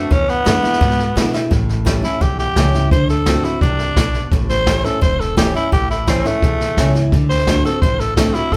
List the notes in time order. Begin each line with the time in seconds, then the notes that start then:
Already playing: F#2 A3 C4 F#4
0.11 E2 C#4, kick, snare
0.28 B3, snare
0.45 F#2 D3 G#3 B3 E4, snare, hi-hat pedal
0.63 B3 E4, muted upright bass stroke, snare
0.73 snare
0.81 G#2 B2, kick, snare
0.90 snare
0.99 snare
1.16 B2 D3 G#3 B3 E4, snare, hi-hat pedal
1.34 B3 E4, snare
1.51 A1 A2, kick, snare
1.69 snare
1.85 E3 G3 C#4 E4, kick, snare, hi-hat pedal
2.02 C#4 E4, snare
2.21 B1 E2 G4, kick, snare
2.38 G4, snare
2.56 C#2 E3 G3 C#4 E4, kick, snare, hi-hat pedal
2.74 C#4 E4, snare
2.91 D2 D3 C5, kick, snare
3.09 A4, snare
3.26 D3 A3 C4 F#4, kick, snare, hi-hat pedal
3.44 C4 E4 F#4, snare
3.61 C2 C3 D4, kick, snare
3.79 snare
3.96 B1 B2, kick, snare, hi-hat pedal
4.14 snare
4.31 A1 A2, kick, snare
4.49 C5, snare
4.67 E3 G3 C#4 E4, kick, snare, hi-hat pedal
4.84 C#4 E4 A4, snare
5.01 E1 E2 C5, kick, snare
5.20 A4, snare
5.37 E3 G3 C#4 E4 G4, kick, snare, hi-hat pedal
5.55 C#4 E4, snare
5.72 A1 A2 G4, kick, snare
5.90 E4, snare
6.07 E3 G3 C4 C#4 E4, kick, snare, hi-hat pedal
6.25 A3 C#4 E4, snare
6.42 B1 E2, kick, snare
6.60 snare
6.77 C#2 E3 G3 C#4 E4, kick, snare, hi-hat pedal
6.94 C#4 E4, snare
7.12 D2 D3, kick, snare
7.30 C5, snare
7.38 snare
7.47 D3 A3 C4 F#4, kick, snare, hi-hat pedal
7.65 C4 F#4 A4, snare
7.82 A1 A2 C5, kick, snare
8.00 A4, snare
8.16 D3 A3 C4 F#4 A4, kick, snare, hi-hat pedal
8.34 C4 E4 F#4, snare
8.52 D2 A4, kick, snare